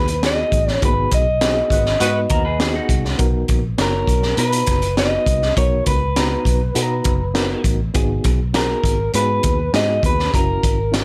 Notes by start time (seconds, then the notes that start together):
Already playing: D#2 B4
0.08 closed hi-hat
0.22 A#3 D#4 F#4 G#4, snare, closed hi-hat
0.26 B3 D#5
0.52 A1, kick, closed hi-hat
0.68 snare
0.72 C#5
0.81 G#1 A#3 D#4 F#4 G#4 B4, kick, closed hi-hat
0.87 B3
1.11 B1 D#5, kick, closed hi-hat
1.41 B3 D#4 F#4 G#4, snare, closed hi-hat
1.70 G#1 G#3 F#4 B4, kick, closed hi-hat
1.86 snare
2.00 G#2 G#3 B3 D#4 F#4 B4, closed hi-hat
2.30 D#2 F#4 A#4, kick, closed hi-hat
2.45 G#4 B4
2.59 B3 D#4 F#4 G#4, snare, closed hi-hat
2.75 D#4 F#4
2.89 C2, kick, closed hi-hat
3.05 snare
3.18 B1 B3 D#4 F#4 A#4, kick, closed hi-hat
3.48 A#1, kick, closed hi-hat
3.78 F#1 B3 D#4 F#4 A#4 C#5, snare, closed hi-hat
4.07 B1, kick, closed hi-hat
4.22 snare
4.37 B2 B3 D#4 F#4 B4 A#5, closed hi-hat
4.52 closed hi-hat
4.67 F#1, kick, snare, closed hi-hat
4.82 closed hi-hat
4.97 B3 D#4 F#4 B4 D#5, snare, closed hi-hat
5.26 C2, kick, closed hi-hat
5.42 snare
5.57 B1 B3 D#4 F#4 A#4 C#5, kick, closed hi-hat
5.86 C#2 B4, kick, closed hi-hat
6.16 B3 D#4 F#4 A#5, snare, closed hi-hat
6.45 B1, kick, closed hi-hat
6.75 B2 B3 D#4 F#4 A4, closed hi-hat
6.83 A#5
7.04 F#1, kick, closed hi-hat
7.34 B3 D#4 F#4 A#4, snare, closed hi-hat
7.64 A1, kick, closed hi-hat
7.94 G#1 B3 D#4 F#4 G#4, kick, closed hi-hat
8.24 B1, kick, closed hi-hat
8.53 B3 D#4 F#4 G#4 A#4, snare, closed hi-hat
8.84 G#1, kick, closed hi-hat
9.14 G#2 B3 D#4 F#4 G#4 B4, closed hi-hat
9.43 D#2, kick, closed hi-hat
9.73 G#2 B3 D#4 F#4 G#4 D#5, snare, closed hi-hat
10.03 D#2 B4, kick, closed hi-hat
10.19 snare
10.34 F#1 C#4 E4 F#4 A#4, kick, closed hi-hat
10.63 G#1, kick, closed hi-hat
10.92 C#4 E4 F#4 A#4, snare, closed hi-hat